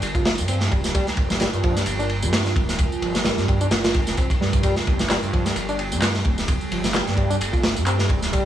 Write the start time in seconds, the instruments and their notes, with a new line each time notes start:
Already playing: ambient pad G3 F4 A#4
0.02 detuned saw bass G1, ride, tambourine
0.15 reed electric piano F4, kick, tambourine
0.25 snare, ride
0.38 detuned saw bass G2, tambourine
0.48 reed electric piano C4, ride, tambourine
0.61 snare, tambourine
0.71 detuned saw bass D1, reed electric piano G3, kick, ride
0.84 snare, tambourine
0.95 reed electric piano G3, kick, ride, tambourine
1.07 snare, tambourine
1.17 detuned saw bass G1, kick, ride
1.30 snare, tambourine, low conga
1.40 reed electric piano G3, snare, ride, tambourine
1.53 detuned saw bass G2, tambourine
1.63 reed electric piano F3, kick, ride
1.76 reed electric piano G3, snare, tambourine
1.86 detuned saw bass G1, ride, tambourine
1.99 reed electric piano D4, tambourine
2.09 ride
2.23 detuned saw bass G2, reed electric piano G3, tambourine, high conga
2.33 snare, ride, tambourine
2.46 snare, tambourine
2.56 detuned saw bass D1, kick, ride, high conga
2.69 snare, tambourine
2.78 kick, ride, tambourine
2.92 tambourine
3.02 detuned saw bass G1, reed electric piano F3, ride
3.15 snare, tambourine, high conga, low conga
3.25 reed electric piano G3, snare, ride, tambourine
3.38 detuned saw bass G2, snare, tambourine, high conga
3.48 reed electric piano G3, kick, ride
3.61 reed electric piano D4, tambourine
3.71 detuned saw bass G1, snare, ride, tambourine
3.84 reed electric piano F4, snare, ride, tambourine
3.94 kick, ride
4.07 detuned saw bass F1, snare, tambourine
4.17 reed electric piano C4, kick, ride, tambourine
4.30 kick, ride, tambourine
4.41 detuned saw bass G2, reed electric piano G3, snare
4.53 kick, ride, tambourine
4.63 reed electric piano G3, ambient pad G4 A4, kick, ride, tambourine
4.76 snare, tambourine
4.87 detuned saw bass G1, kick, ride
4.99 snare, tambourine, low conga
5.10 reed electric piano G3, snare, clap, ride, tambourine
5.23 detuned saw bass G2, tambourine
5.33 reed electric piano F3, kick, ride
5.46 reed electric piano G3, snare, tambourine
5.56 detuned saw bass G1, ride, tambourine
5.69 reed electric piano D4, tambourine
5.79 ride
5.92 detuned saw bass G2, reed electric piano G3, tambourine, high conga
6.02 snare, clap, ride, tambourine
6.15 snare, tambourine
6.25 detuned saw bass D1, kick, ride, high conga
6.38 snare, tambourine
6.48 kick, ride, tambourine
6.61 tambourine
6.72 detuned saw bass G1, reed electric piano F3, ride
6.84 snare, tambourine, high conga, low conga
6.94 reed electric piano G3, snare, clap, ride, tambourine
7.07 detuned saw bass G2, snare, tambourine, high conga
7.17 reed electric piano G3, kick, ride
7.30 reed electric piano D4, tambourine, high bongo
7.41 detuned saw bass G1, ride, tambourine
7.53 reed electric piano F4, kick, tambourine
7.64 snare, ride
7.76 detuned saw bass G2, tambourine
7.86 reed electric piano C4, clap, ride, tambourine
7.99 snare, tambourine
8.09 detuned saw bass D1, reed electric piano G3, kick, ride
8.22 snare, tambourine
8.33 reed electric piano G3, kick, ride, tambourine